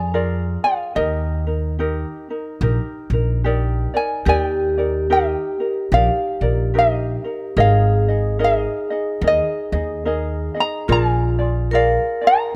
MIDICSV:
0, 0, Header, 1, 5, 480
1, 0, Start_track
1, 0, Key_signature, -3, "major"
1, 0, Tempo, 827586
1, 552, Time_signature, 4, 2, 24, 8
1, 7282, End_track
2, 0, Start_track
2, 0, Title_t, "Ukulele"
2, 0, Program_c, 0, 24
2, 0, Note_on_c, 0, 80, 83
2, 369, Note_off_c, 0, 80, 0
2, 371, Note_on_c, 0, 77, 74
2, 556, Note_on_c, 0, 75, 72
2, 562, Note_off_c, 0, 77, 0
2, 1969, Note_off_c, 0, 75, 0
2, 2300, Note_on_c, 0, 80, 72
2, 2468, Note_off_c, 0, 80, 0
2, 2488, Note_on_c, 0, 80, 78
2, 2552, Note_off_c, 0, 80, 0
2, 2552, Note_on_c, 0, 79, 78
2, 2970, Note_off_c, 0, 79, 0
2, 2972, Note_on_c, 0, 75, 66
2, 3442, Note_off_c, 0, 75, 0
2, 3444, Note_on_c, 0, 77, 85
2, 3932, Note_off_c, 0, 77, 0
2, 3935, Note_on_c, 0, 75, 74
2, 4380, Note_off_c, 0, 75, 0
2, 4409, Note_on_c, 0, 77, 83
2, 4895, Note_off_c, 0, 77, 0
2, 4897, Note_on_c, 0, 75, 80
2, 5372, Note_off_c, 0, 75, 0
2, 5379, Note_on_c, 0, 75, 82
2, 6148, Note_off_c, 0, 75, 0
2, 6150, Note_on_c, 0, 82, 91
2, 6333, Note_off_c, 0, 82, 0
2, 6335, Note_on_c, 0, 80, 86
2, 6812, Note_off_c, 0, 80, 0
2, 6814, Note_on_c, 0, 77, 74
2, 7102, Note_off_c, 0, 77, 0
2, 7117, Note_on_c, 0, 82, 94
2, 7282, Note_off_c, 0, 82, 0
2, 7282, End_track
3, 0, Start_track
3, 0, Title_t, "Ukulele"
3, 0, Program_c, 1, 24
3, 0, Note_on_c, 1, 65, 39
3, 0, Note_on_c, 1, 68, 48
3, 0, Note_on_c, 1, 74, 56
3, 73, Note_off_c, 1, 74, 0
3, 75, Note_off_c, 1, 65, 0
3, 76, Note_off_c, 1, 68, 0
3, 80, Note_on_c, 1, 70, 70
3, 82, Note_on_c, 1, 65, 68
3, 83, Note_on_c, 1, 68, 68
3, 85, Note_on_c, 1, 74, 74
3, 363, Note_off_c, 1, 74, 0
3, 365, Note_off_c, 1, 70, 0
3, 366, Note_off_c, 1, 65, 0
3, 367, Note_off_c, 1, 68, 0
3, 369, Note_on_c, 1, 74, 46
3, 378, Note_on_c, 1, 68, 40
3, 382, Note_on_c, 1, 65, 36
3, 549, Note_off_c, 1, 68, 0
3, 551, Note_on_c, 1, 67, 66
3, 556, Note_off_c, 1, 74, 0
3, 557, Note_off_c, 1, 65, 0
3, 559, Note_on_c, 1, 63, 69
3, 560, Note_on_c, 1, 70, 77
3, 840, Note_off_c, 1, 67, 0
3, 844, Note_off_c, 1, 63, 0
3, 845, Note_off_c, 1, 70, 0
3, 851, Note_on_c, 1, 70, 44
3, 856, Note_on_c, 1, 63, 33
3, 1034, Note_off_c, 1, 63, 0
3, 1036, Note_off_c, 1, 70, 0
3, 1037, Note_on_c, 1, 67, 66
3, 1041, Note_on_c, 1, 63, 68
3, 1043, Note_on_c, 1, 70, 71
3, 1323, Note_off_c, 1, 67, 0
3, 1325, Note_off_c, 1, 63, 0
3, 1326, Note_off_c, 1, 70, 0
3, 1335, Note_on_c, 1, 70, 43
3, 1337, Note_on_c, 1, 63, 43
3, 1515, Note_off_c, 1, 63, 0
3, 1515, Note_on_c, 1, 67, 51
3, 1517, Note_off_c, 1, 70, 0
3, 1522, Note_on_c, 1, 63, 59
3, 1524, Note_on_c, 1, 70, 59
3, 1802, Note_off_c, 1, 67, 0
3, 1805, Note_off_c, 1, 63, 0
3, 1806, Note_off_c, 1, 70, 0
3, 1817, Note_on_c, 1, 70, 48
3, 1820, Note_on_c, 1, 63, 46
3, 1995, Note_off_c, 1, 70, 0
3, 1997, Note_off_c, 1, 63, 0
3, 1997, Note_on_c, 1, 67, 74
3, 2004, Note_on_c, 1, 63, 78
3, 2004, Note_on_c, 1, 74, 68
3, 2005, Note_on_c, 1, 70, 82
3, 2277, Note_off_c, 1, 74, 0
3, 2282, Note_off_c, 1, 70, 0
3, 2283, Note_off_c, 1, 67, 0
3, 2284, Note_on_c, 1, 74, 54
3, 2286, Note_off_c, 1, 63, 0
3, 2289, Note_on_c, 1, 70, 49
3, 2295, Note_on_c, 1, 63, 41
3, 2471, Note_off_c, 1, 70, 0
3, 2473, Note_off_c, 1, 74, 0
3, 2474, Note_off_c, 1, 63, 0
3, 2475, Note_on_c, 1, 67, 69
3, 2478, Note_on_c, 1, 70, 75
3, 2481, Note_on_c, 1, 63, 76
3, 2485, Note_on_c, 1, 74, 81
3, 2761, Note_off_c, 1, 67, 0
3, 2763, Note_off_c, 1, 70, 0
3, 2763, Note_off_c, 1, 74, 0
3, 2765, Note_off_c, 1, 63, 0
3, 2770, Note_on_c, 1, 74, 44
3, 2774, Note_on_c, 1, 70, 40
3, 2779, Note_on_c, 1, 63, 41
3, 2951, Note_off_c, 1, 63, 0
3, 2953, Note_off_c, 1, 70, 0
3, 2956, Note_off_c, 1, 74, 0
3, 2957, Note_on_c, 1, 67, 71
3, 2958, Note_on_c, 1, 63, 73
3, 2960, Note_on_c, 1, 70, 77
3, 3240, Note_off_c, 1, 70, 0
3, 3243, Note_off_c, 1, 63, 0
3, 3243, Note_off_c, 1, 67, 0
3, 3247, Note_on_c, 1, 70, 45
3, 3250, Note_on_c, 1, 63, 36
3, 3432, Note_off_c, 1, 70, 0
3, 3433, Note_off_c, 1, 63, 0
3, 3434, Note_on_c, 1, 67, 55
3, 3440, Note_on_c, 1, 63, 54
3, 3444, Note_on_c, 1, 70, 58
3, 3450, Note_on_c, 1, 74, 63
3, 3716, Note_off_c, 1, 74, 0
3, 3719, Note_off_c, 1, 70, 0
3, 3721, Note_off_c, 1, 67, 0
3, 3723, Note_on_c, 1, 74, 48
3, 3724, Note_off_c, 1, 63, 0
3, 3726, Note_on_c, 1, 70, 46
3, 3735, Note_on_c, 1, 63, 41
3, 3905, Note_off_c, 1, 70, 0
3, 3908, Note_off_c, 1, 63, 0
3, 3908, Note_on_c, 1, 67, 67
3, 3912, Note_off_c, 1, 74, 0
3, 3914, Note_on_c, 1, 70, 72
3, 3915, Note_on_c, 1, 63, 68
3, 4194, Note_off_c, 1, 70, 0
3, 4198, Note_off_c, 1, 67, 0
3, 4201, Note_off_c, 1, 63, 0
3, 4201, Note_on_c, 1, 70, 47
3, 4208, Note_on_c, 1, 63, 40
3, 4383, Note_off_c, 1, 70, 0
3, 4385, Note_off_c, 1, 63, 0
3, 4390, Note_on_c, 1, 70, 74
3, 4392, Note_on_c, 1, 63, 79
3, 4396, Note_on_c, 1, 75, 83
3, 4397, Note_on_c, 1, 68, 75
3, 4680, Note_off_c, 1, 70, 0
3, 4681, Note_off_c, 1, 63, 0
3, 4683, Note_off_c, 1, 68, 0
3, 4683, Note_off_c, 1, 75, 0
3, 4689, Note_on_c, 1, 75, 54
3, 4696, Note_on_c, 1, 68, 44
3, 4697, Note_on_c, 1, 63, 37
3, 4863, Note_off_c, 1, 68, 0
3, 4864, Note_off_c, 1, 63, 0
3, 4866, Note_off_c, 1, 75, 0
3, 4867, Note_on_c, 1, 70, 72
3, 4870, Note_on_c, 1, 68, 68
3, 4871, Note_on_c, 1, 63, 70
3, 4873, Note_on_c, 1, 75, 76
3, 5157, Note_off_c, 1, 75, 0
3, 5159, Note_off_c, 1, 70, 0
3, 5160, Note_off_c, 1, 68, 0
3, 5161, Note_off_c, 1, 63, 0
3, 5164, Note_on_c, 1, 75, 52
3, 5170, Note_on_c, 1, 68, 42
3, 5172, Note_on_c, 1, 63, 41
3, 5350, Note_off_c, 1, 63, 0
3, 5351, Note_off_c, 1, 68, 0
3, 5352, Note_off_c, 1, 75, 0
3, 5352, Note_on_c, 1, 70, 52
3, 5357, Note_on_c, 1, 63, 60
3, 5358, Note_on_c, 1, 68, 56
3, 5359, Note_on_c, 1, 75, 60
3, 5634, Note_off_c, 1, 75, 0
3, 5641, Note_off_c, 1, 68, 0
3, 5641, Note_off_c, 1, 70, 0
3, 5641, Note_on_c, 1, 75, 52
3, 5644, Note_off_c, 1, 63, 0
3, 5648, Note_on_c, 1, 68, 46
3, 5653, Note_on_c, 1, 63, 41
3, 5826, Note_off_c, 1, 63, 0
3, 5829, Note_off_c, 1, 68, 0
3, 5831, Note_off_c, 1, 75, 0
3, 5831, Note_on_c, 1, 70, 64
3, 5833, Note_on_c, 1, 63, 66
3, 5836, Note_on_c, 1, 68, 70
3, 5838, Note_on_c, 1, 75, 68
3, 6109, Note_off_c, 1, 75, 0
3, 6116, Note_on_c, 1, 75, 50
3, 6118, Note_off_c, 1, 68, 0
3, 6121, Note_off_c, 1, 70, 0
3, 6122, Note_off_c, 1, 63, 0
3, 6125, Note_on_c, 1, 68, 46
3, 6130, Note_on_c, 1, 63, 38
3, 6310, Note_off_c, 1, 75, 0
3, 6312, Note_off_c, 1, 68, 0
3, 6312, Note_on_c, 1, 70, 69
3, 6315, Note_off_c, 1, 63, 0
3, 6317, Note_on_c, 1, 65, 81
3, 6319, Note_on_c, 1, 68, 75
3, 6322, Note_on_c, 1, 74, 77
3, 6597, Note_off_c, 1, 74, 0
3, 6602, Note_off_c, 1, 70, 0
3, 6603, Note_off_c, 1, 68, 0
3, 6604, Note_on_c, 1, 74, 47
3, 6605, Note_off_c, 1, 65, 0
3, 6610, Note_on_c, 1, 68, 43
3, 6618, Note_on_c, 1, 65, 39
3, 6795, Note_off_c, 1, 74, 0
3, 6798, Note_off_c, 1, 68, 0
3, 6802, Note_off_c, 1, 65, 0
3, 6803, Note_on_c, 1, 70, 67
3, 6809, Note_on_c, 1, 65, 62
3, 6810, Note_on_c, 1, 68, 69
3, 6810, Note_on_c, 1, 74, 84
3, 7077, Note_off_c, 1, 74, 0
3, 7084, Note_on_c, 1, 74, 52
3, 7087, Note_off_c, 1, 68, 0
3, 7088, Note_off_c, 1, 70, 0
3, 7091, Note_off_c, 1, 65, 0
3, 7094, Note_on_c, 1, 68, 45
3, 7100, Note_on_c, 1, 65, 41
3, 7270, Note_off_c, 1, 65, 0
3, 7274, Note_off_c, 1, 68, 0
3, 7275, Note_off_c, 1, 74, 0
3, 7282, End_track
4, 0, Start_track
4, 0, Title_t, "Vibraphone"
4, 0, Program_c, 2, 11
4, 2468, Note_on_c, 2, 67, 73
4, 4391, Note_on_c, 2, 68, 83
4, 4448, Note_off_c, 2, 67, 0
4, 6312, Note_on_c, 2, 65, 86
4, 6371, Note_off_c, 2, 68, 0
4, 6794, Note_on_c, 2, 70, 87
4, 6808, Note_off_c, 2, 65, 0
4, 7282, Note_off_c, 2, 70, 0
4, 7282, End_track
5, 0, Start_track
5, 0, Title_t, "Upright bass"
5, 0, Program_c, 3, 32
5, 0, Note_on_c, 3, 41, 77
5, 322, Note_off_c, 3, 41, 0
5, 557, Note_on_c, 3, 39, 87
5, 1179, Note_off_c, 3, 39, 0
5, 1513, Note_on_c, 3, 34, 91
5, 1606, Note_off_c, 3, 34, 0
5, 1797, Note_on_c, 3, 34, 81
5, 2234, Note_off_c, 3, 34, 0
5, 2471, Note_on_c, 3, 39, 92
5, 3095, Note_off_c, 3, 39, 0
5, 3432, Note_on_c, 3, 34, 91
5, 3525, Note_off_c, 3, 34, 0
5, 3718, Note_on_c, 3, 34, 77
5, 4155, Note_off_c, 3, 34, 0
5, 4388, Note_on_c, 3, 32, 91
5, 5014, Note_off_c, 3, 32, 0
5, 5344, Note_on_c, 3, 39, 90
5, 5441, Note_off_c, 3, 39, 0
5, 5639, Note_on_c, 3, 39, 82
5, 6077, Note_off_c, 3, 39, 0
5, 6315, Note_on_c, 3, 34, 85
5, 6939, Note_off_c, 3, 34, 0
5, 7282, End_track
0, 0, End_of_file